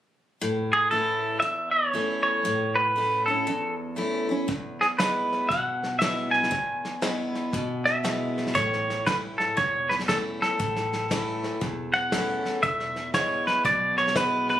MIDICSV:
0, 0, Header, 1, 5, 480
1, 0, Start_track
1, 0, Key_signature, 3, "major"
1, 0, Tempo, 509338
1, 380, Time_signature, 4, 2, 24, 8
1, 13758, End_track
2, 0, Start_track
2, 0, Title_t, "Clean electric guitar"
2, 0, Program_c, 0, 27
2, 689, Note_on_c, 0, 68, 75
2, 848, Note_off_c, 0, 68, 0
2, 856, Note_on_c, 0, 69, 70
2, 1313, Note_off_c, 0, 69, 0
2, 1317, Note_on_c, 0, 76, 93
2, 1612, Note_off_c, 0, 76, 0
2, 1615, Note_on_c, 0, 73, 80
2, 2090, Note_off_c, 0, 73, 0
2, 2101, Note_on_c, 0, 73, 82
2, 2596, Note_on_c, 0, 71, 78
2, 2612, Note_off_c, 0, 73, 0
2, 3066, Note_off_c, 0, 71, 0
2, 3070, Note_on_c, 0, 69, 60
2, 3527, Note_off_c, 0, 69, 0
2, 4533, Note_on_c, 0, 68, 62
2, 4580, Note_off_c, 0, 68, 0
2, 4698, Note_on_c, 0, 71, 76
2, 5170, Note_on_c, 0, 78, 81
2, 5196, Note_off_c, 0, 71, 0
2, 5639, Note_off_c, 0, 78, 0
2, 5643, Note_on_c, 0, 76, 77
2, 5946, Note_off_c, 0, 76, 0
2, 5949, Note_on_c, 0, 80, 83
2, 7402, Note_on_c, 0, 76, 80
2, 7844, Note_off_c, 0, 80, 0
2, 8057, Note_on_c, 0, 73, 85
2, 8078, Note_off_c, 0, 76, 0
2, 8543, Note_on_c, 0, 71, 82
2, 8555, Note_off_c, 0, 73, 0
2, 8627, Note_off_c, 0, 71, 0
2, 8840, Note_on_c, 0, 69, 69
2, 9022, Note_off_c, 0, 69, 0
2, 9022, Note_on_c, 0, 73, 77
2, 9324, Note_on_c, 0, 71, 84
2, 9342, Note_off_c, 0, 73, 0
2, 9372, Note_off_c, 0, 71, 0
2, 9501, Note_on_c, 0, 69, 79
2, 9585, Note_off_c, 0, 69, 0
2, 9822, Note_on_c, 0, 69, 84
2, 11248, Note_on_c, 0, 78, 101
2, 11298, Note_off_c, 0, 69, 0
2, 11896, Note_off_c, 0, 78, 0
2, 11900, Note_on_c, 0, 76, 91
2, 12346, Note_off_c, 0, 76, 0
2, 12387, Note_on_c, 0, 73, 89
2, 12691, Note_off_c, 0, 73, 0
2, 12695, Note_on_c, 0, 71, 73
2, 12850, Note_off_c, 0, 71, 0
2, 12869, Note_on_c, 0, 74, 77
2, 13152, Note_off_c, 0, 74, 0
2, 13174, Note_on_c, 0, 73, 81
2, 13346, Note_off_c, 0, 73, 0
2, 13353, Note_on_c, 0, 71, 79
2, 13634, Note_off_c, 0, 71, 0
2, 13665, Note_on_c, 0, 71, 80
2, 13758, Note_off_c, 0, 71, 0
2, 13758, End_track
3, 0, Start_track
3, 0, Title_t, "Steel-string acoustic guitar"
3, 0, Program_c, 1, 25
3, 391, Note_on_c, 1, 45, 73
3, 857, Note_on_c, 1, 57, 47
3, 859, Note_on_c, 1, 52, 51
3, 870, Note_on_c, 1, 61, 50
3, 870, Note_on_c, 1, 64, 49
3, 1312, Note_off_c, 1, 45, 0
3, 1322, Note_off_c, 1, 57, 0
3, 1323, Note_off_c, 1, 52, 0
3, 1329, Note_off_c, 1, 61, 0
3, 1329, Note_off_c, 1, 64, 0
3, 1340, Note_on_c, 1, 40, 70
3, 1822, Note_on_c, 1, 52, 47
3, 1832, Note_on_c, 1, 57, 56
3, 1835, Note_on_c, 1, 61, 63
3, 1839, Note_on_c, 1, 64, 51
3, 2268, Note_off_c, 1, 40, 0
3, 2286, Note_off_c, 1, 52, 0
3, 2290, Note_off_c, 1, 57, 0
3, 2292, Note_off_c, 1, 61, 0
3, 2294, Note_off_c, 1, 64, 0
3, 2308, Note_on_c, 1, 45, 83
3, 2785, Note_on_c, 1, 52, 48
3, 2788, Note_on_c, 1, 57, 46
3, 2802, Note_on_c, 1, 61, 54
3, 2807, Note_on_c, 1, 64, 54
3, 3077, Note_off_c, 1, 64, 0
3, 3082, Note_off_c, 1, 52, 0
3, 3083, Note_off_c, 1, 57, 0
3, 3089, Note_on_c, 1, 64, 47
3, 3090, Note_off_c, 1, 61, 0
3, 3107, Note_on_c, 1, 61, 41
3, 3232, Note_off_c, 1, 45, 0
3, 3254, Note_off_c, 1, 64, 0
3, 3263, Note_off_c, 1, 61, 0
3, 3268, Note_on_c, 1, 40, 79
3, 3733, Note_on_c, 1, 52, 49
3, 3738, Note_on_c, 1, 57, 53
3, 3747, Note_on_c, 1, 61, 58
3, 3748, Note_on_c, 1, 64, 58
3, 4030, Note_off_c, 1, 64, 0
3, 4036, Note_off_c, 1, 52, 0
3, 4039, Note_off_c, 1, 57, 0
3, 4041, Note_on_c, 1, 64, 48
3, 4043, Note_off_c, 1, 61, 0
3, 4063, Note_on_c, 1, 61, 44
3, 4192, Note_off_c, 1, 40, 0
3, 4211, Note_off_c, 1, 64, 0
3, 4220, Note_on_c, 1, 40, 75
3, 4221, Note_off_c, 1, 61, 0
3, 4698, Note_on_c, 1, 52, 47
3, 4704, Note_on_c, 1, 56, 58
3, 4712, Note_on_c, 1, 59, 47
3, 4717, Note_on_c, 1, 64, 57
3, 5149, Note_off_c, 1, 40, 0
3, 5164, Note_off_c, 1, 52, 0
3, 5167, Note_off_c, 1, 56, 0
3, 5172, Note_off_c, 1, 59, 0
3, 5174, Note_off_c, 1, 64, 0
3, 5196, Note_on_c, 1, 47, 75
3, 5662, Note_on_c, 1, 52, 47
3, 5666, Note_on_c, 1, 56, 54
3, 5672, Note_on_c, 1, 59, 61
3, 5677, Note_on_c, 1, 64, 60
3, 6116, Note_off_c, 1, 47, 0
3, 6126, Note_off_c, 1, 52, 0
3, 6129, Note_off_c, 1, 56, 0
3, 6131, Note_off_c, 1, 59, 0
3, 6133, Note_on_c, 1, 40, 85
3, 6134, Note_off_c, 1, 64, 0
3, 6611, Note_on_c, 1, 52, 43
3, 6616, Note_on_c, 1, 56, 44
3, 6621, Note_on_c, 1, 59, 54
3, 6625, Note_on_c, 1, 64, 50
3, 7065, Note_off_c, 1, 40, 0
3, 7081, Note_off_c, 1, 52, 0
3, 7083, Note_off_c, 1, 56, 0
3, 7086, Note_off_c, 1, 59, 0
3, 7088, Note_off_c, 1, 64, 0
3, 7105, Note_on_c, 1, 47, 80
3, 7573, Note_on_c, 1, 52, 53
3, 7579, Note_on_c, 1, 56, 54
3, 7587, Note_on_c, 1, 64, 60
3, 7589, Note_on_c, 1, 59, 58
3, 8031, Note_off_c, 1, 47, 0
3, 8042, Note_off_c, 1, 52, 0
3, 8045, Note_off_c, 1, 56, 0
3, 8049, Note_off_c, 1, 59, 0
3, 8049, Note_off_c, 1, 64, 0
3, 8057, Note_on_c, 1, 45, 85
3, 8541, Note_on_c, 1, 52, 50
3, 8545, Note_on_c, 1, 57, 53
3, 8552, Note_on_c, 1, 61, 44
3, 8561, Note_on_c, 1, 64, 52
3, 8986, Note_off_c, 1, 45, 0
3, 9005, Note_off_c, 1, 52, 0
3, 9007, Note_off_c, 1, 57, 0
3, 9011, Note_off_c, 1, 61, 0
3, 9015, Note_off_c, 1, 64, 0
3, 9016, Note_on_c, 1, 40, 77
3, 9498, Note_on_c, 1, 52, 59
3, 9509, Note_on_c, 1, 57, 53
3, 9510, Note_on_c, 1, 61, 58
3, 9515, Note_on_c, 1, 64, 60
3, 9945, Note_off_c, 1, 40, 0
3, 9963, Note_off_c, 1, 52, 0
3, 9968, Note_off_c, 1, 57, 0
3, 9969, Note_off_c, 1, 61, 0
3, 9971, Note_off_c, 1, 64, 0
3, 9985, Note_on_c, 1, 45, 80
3, 10468, Note_on_c, 1, 52, 53
3, 10470, Note_on_c, 1, 57, 52
3, 10476, Note_on_c, 1, 61, 53
3, 10484, Note_on_c, 1, 64, 53
3, 10908, Note_off_c, 1, 45, 0
3, 10927, Note_off_c, 1, 52, 0
3, 10929, Note_off_c, 1, 57, 0
3, 10932, Note_off_c, 1, 61, 0
3, 10935, Note_off_c, 1, 64, 0
3, 10943, Note_on_c, 1, 40, 71
3, 11426, Note_on_c, 1, 52, 55
3, 11427, Note_on_c, 1, 57, 61
3, 11441, Note_on_c, 1, 64, 55
3, 11442, Note_on_c, 1, 61, 64
3, 11867, Note_off_c, 1, 40, 0
3, 11885, Note_off_c, 1, 52, 0
3, 11886, Note_off_c, 1, 57, 0
3, 11893, Note_off_c, 1, 64, 0
3, 11894, Note_off_c, 1, 61, 0
3, 11904, Note_on_c, 1, 40, 77
3, 12381, Note_on_c, 1, 52, 44
3, 12390, Note_on_c, 1, 56, 55
3, 12394, Note_on_c, 1, 59, 50
3, 12403, Note_on_c, 1, 64, 55
3, 12827, Note_off_c, 1, 40, 0
3, 12842, Note_off_c, 1, 52, 0
3, 12847, Note_off_c, 1, 56, 0
3, 12849, Note_off_c, 1, 59, 0
3, 12854, Note_off_c, 1, 64, 0
3, 12863, Note_on_c, 1, 47, 75
3, 13343, Note_on_c, 1, 52, 50
3, 13349, Note_on_c, 1, 56, 55
3, 13353, Note_on_c, 1, 59, 55
3, 13354, Note_on_c, 1, 64, 62
3, 13758, Note_off_c, 1, 47, 0
3, 13758, Note_off_c, 1, 52, 0
3, 13758, Note_off_c, 1, 56, 0
3, 13758, Note_off_c, 1, 59, 0
3, 13758, Note_off_c, 1, 64, 0
3, 13758, End_track
4, 0, Start_track
4, 0, Title_t, "Fingered electric bass"
4, 0, Program_c, 2, 33
4, 8068, Note_on_c, 2, 33, 77
4, 8902, Note_off_c, 2, 33, 0
4, 9025, Note_on_c, 2, 28, 65
4, 9860, Note_off_c, 2, 28, 0
4, 9990, Note_on_c, 2, 33, 72
4, 10821, Note_off_c, 2, 33, 0
4, 10947, Note_on_c, 2, 28, 75
4, 11780, Note_off_c, 2, 28, 0
4, 11902, Note_on_c, 2, 28, 70
4, 12736, Note_off_c, 2, 28, 0
4, 12860, Note_on_c, 2, 35, 69
4, 13694, Note_off_c, 2, 35, 0
4, 13758, End_track
5, 0, Start_track
5, 0, Title_t, "Drums"
5, 4228, Note_on_c, 9, 36, 91
5, 4231, Note_on_c, 9, 38, 29
5, 4323, Note_off_c, 9, 36, 0
5, 4325, Note_off_c, 9, 38, 0
5, 4539, Note_on_c, 9, 38, 30
5, 4633, Note_off_c, 9, 38, 0
5, 4708, Note_on_c, 9, 38, 91
5, 4708, Note_on_c, 9, 44, 70
5, 4803, Note_off_c, 9, 38, 0
5, 4803, Note_off_c, 9, 44, 0
5, 5020, Note_on_c, 9, 38, 32
5, 5114, Note_off_c, 9, 38, 0
5, 5187, Note_on_c, 9, 36, 90
5, 5189, Note_on_c, 9, 38, 29
5, 5281, Note_off_c, 9, 36, 0
5, 5283, Note_off_c, 9, 38, 0
5, 5499, Note_on_c, 9, 38, 27
5, 5593, Note_off_c, 9, 38, 0
5, 5669, Note_on_c, 9, 38, 104
5, 5669, Note_on_c, 9, 44, 79
5, 5763, Note_off_c, 9, 38, 0
5, 5763, Note_off_c, 9, 44, 0
5, 5974, Note_on_c, 9, 38, 30
5, 6061, Note_off_c, 9, 38, 0
5, 6061, Note_on_c, 9, 38, 28
5, 6144, Note_off_c, 9, 38, 0
5, 6144, Note_on_c, 9, 36, 92
5, 6144, Note_on_c, 9, 38, 28
5, 6238, Note_off_c, 9, 36, 0
5, 6238, Note_off_c, 9, 38, 0
5, 6453, Note_on_c, 9, 38, 31
5, 6548, Note_off_c, 9, 38, 0
5, 6618, Note_on_c, 9, 38, 92
5, 6618, Note_on_c, 9, 44, 66
5, 6712, Note_off_c, 9, 38, 0
5, 6712, Note_off_c, 9, 44, 0
5, 6928, Note_on_c, 9, 38, 31
5, 7022, Note_off_c, 9, 38, 0
5, 7094, Note_on_c, 9, 38, 30
5, 7100, Note_on_c, 9, 36, 96
5, 7188, Note_off_c, 9, 38, 0
5, 7194, Note_off_c, 9, 36, 0
5, 7410, Note_on_c, 9, 38, 29
5, 7504, Note_off_c, 9, 38, 0
5, 7581, Note_on_c, 9, 38, 94
5, 7581, Note_on_c, 9, 44, 72
5, 7676, Note_off_c, 9, 38, 0
5, 7676, Note_off_c, 9, 44, 0
5, 7894, Note_on_c, 9, 38, 28
5, 7979, Note_off_c, 9, 38, 0
5, 7979, Note_on_c, 9, 38, 29
5, 8065, Note_on_c, 9, 36, 91
5, 8068, Note_off_c, 9, 38, 0
5, 8068, Note_on_c, 9, 38, 29
5, 8159, Note_off_c, 9, 36, 0
5, 8162, Note_off_c, 9, 38, 0
5, 8230, Note_on_c, 9, 38, 32
5, 8324, Note_off_c, 9, 38, 0
5, 8388, Note_on_c, 9, 38, 33
5, 8482, Note_off_c, 9, 38, 0
5, 8546, Note_on_c, 9, 36, 78
5, 8547, Note_on_c, 9, 38, 90
5, 8547, Note_on_c, 9, 44, 75
5, 8640, Note_off_c, 9, 36, 0
5, 8642, Note_off_c, 9, 38, 0
5, 8642, Note_off_c, 9, 44, 0
5, 8858, Note_on_c, 9, 38, 33
5, 8952, Note_off_c, 9, 38, 0
5, 9027, Note_on_c, 9, 36, 94
5, 9028, Note_on_c, 9, 38, 31
5, 9121, Note_off_c, 9, 36, 0
5, 9122, Note_off_c, 9, 38, 0
5, 9337, Note_on_c, 9, 38, 28
5, 9418, Note_off_c, 9, 38, 0
5, 9418, Note_on_c, 9, 38, 28
5, 9507, Note_off_c, 9, 38, 0
5, 9507, Note_on_c, 9, 36, 77
5, 9507, Note_on_c, 9, 38, 92
5, 9507, Note_on_c, 9, 44, 72
5, 9601, Note_off_c, 9, 36, 0
5, 9602, Note_off_c, 9, 38, 0
5, 9602, Note_off_c, 9, 44, 0
5, 9823, Note_on_c, 9, 38, 29
5, 9917, Note_off_c, 9, 38, 0
5, 9988, Note_on_c, 9, 36, 98
5, 9988, Note_on_c, 9, 38, 28
5, 10082, Note_off_c, 9, 36, 0
5, 10082, Note_off_c, 9, 38, 0
5, 10143, Note_on_c, 9, 38, 29
5, 10237, Note_off_c, 9, 38, 0
5, 10300, Note_on_c, 9, 38, 31
5, 10394, Note_off_c, 9, 38, 0
5, 10468, Note_on_c, 9, 36, 69
5, 10468, Note_on_c, 9, 38, 88
5, 10468, Note_on_c, 9, 44, 78
5, 10562, Note_off_c, 9, 36, 0
5, 10562, Note_off_c, 9, 38, 0
5, 10562, Note_off_c, 9, 44, 0
5, 10779, Note_on_c, 9, 38, 33
5, 10873, Note_off_c, 9, 38, 0
5, 10944, Note_on_c, 9, 38, 30
5, 10947, Note_on_c, 9, 36, 88
5, 11039, Note_off_c, 9, 38, 0
5, 11041, Note_off_c, 9, 36, 0
5, 11260, Note_on_c, 9, 38, 30
5, 11354, Note_off_c, 9, 38, 0
5, 11423, Note_on_c, 9, 38, 100
5, 11423, Note_on_c, 9, 44, 81
5, 11425, Note_on_c, 9, 36, 78
5, 11517, Note_off_c, 9, 38, 0
5, 11517, Note_off_c, 9, 44, 0
5, 11519, Note_off_c, 9, 36, 0
5, 11736, Note_on_c, 9, 38, 29
5, 11831, Note_off_c, 9, 38, 0
5, 11904, Note_on_c, 9, 36, 89
5, 11904, Note_on_c, 9, 38, 30
5, 11998, Note_off_c, 9, 36, 0
5, 11998, Note_off_c, 9, 38, 0
5, 12063, Note_on_c, 9, 38, 29
5, 12157, Note_off_c, 9, 38, 0
5, 12213, Note_on_c, 9, 38, 28
5, 12307, Note_off_c, 9, 38, 0
5, 12382, Note_on_c, 9, 36, 77
5, 12382, Note_on_c, 9, 38, 95
5, 12382, Note_on_c, 9, 44, 75
5, 12476, Note_off_c, 9, 36, 0
5, 12476, Note_off_c, 9, 38, 0
5, 12476, Note_off_c, 9, 44, 0
5, 12695, Note_on_c, 9, 38, 32
5, 12789, Note_off_c, 9, 38, 0
5, 12861, Note_on_c, 9, 36, 95
5, 12862, Note_on_c, 9, 38, 30
5, 12955, Note_off_c, 9, 36, 0
5, 12957, Note_off_c, 9, 38, 0
5, 13170, Note_on_c, 9, 38, 29
5, 13261, Note_off_c, 9, 38, 0
5, 13261, Note_on_c, 9, 38, 29
5, 13339, Note_on_c, 9, 36, 73
5, 13341, Note_off_c, 9, 38, 0
5, 13341, Note_on_c, 9, 38, 92
5, 13341, Note_on_c, 9, 44, 77
5, 13434, Note_off_c, 9, 36, 0
5, 13435, Note_off_c, 9, 38, 0
5, 13435, Note_off_c, 9, 44, 0
5, 13655, Note_on_c, 9, 38, 29
5, 13750, Note_off_c, 9, 38, 0
5, 13758, End_track
0, 0, End_of_file